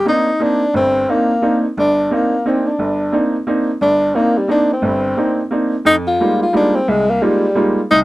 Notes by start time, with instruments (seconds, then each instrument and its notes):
0.06 upright piano A#3 C4 D4 D#4, tenor saxophone D#4
0.40 upright piano A#3 C4 D4 D#4, tenor saxophone D4
0.74 upright piano G1 G2, tenor saxophone C4
1.09 upright piano A#3 C4 D4 D#4, tenor saxophone A#3
1.42 upright piano A#3 C4 D4 D#4
1.77 upright piano G1, tenor saxophone D4
2.11 upright piano A#3 C4 D4 D#4, tenor saxophone A#3
2.46 upright piano A#3 C4 D4 D#4, tenor saxophone C4
2.67 tenor saxophone D4
2.79 upright piano G1
3.12 upright piano A#3 C4 D4 D#4
3.47 upright piano A#3 C4 D4 D#4
3.81 upright piano G1, tenor saxophone D4
4.15 upright piano A#3 C4 D4 D#4, tenor saxophone A#3
4.38 tenor saxophone G3
4.48 upright piano A#3 C4 D4 D#4, tenor saxophone D4
4.73 tenor saxophone C4
4.82 upright piano G1 G2
5.17 upright piano A#3 C4 D4 D#4
5.51 upright piano A#3 C4 D4 D#4
5.85 upright piano F2, tenor saxophone D#4
6.07 tenor saxophone F4
6.20 upright piano G3 G#3 A#3 D#4 F4
6.43 tenor saxophone F4
6.53 upright piano G3 G#3 A#3 D#4 F4, tenor saxophone D4
6.76 tenor saxophone C4
6.88 upright piano C2, tenor saxophone G#3
7.10 tenor saxophone A#3
7.22 upright piano G3 G#3 A#3 D#4 F4, tenor saxophone G3
7.55 upright piano G3 G#3 A#3 D#4 F4
7.91 upright piano C2, tenor saxophone D#4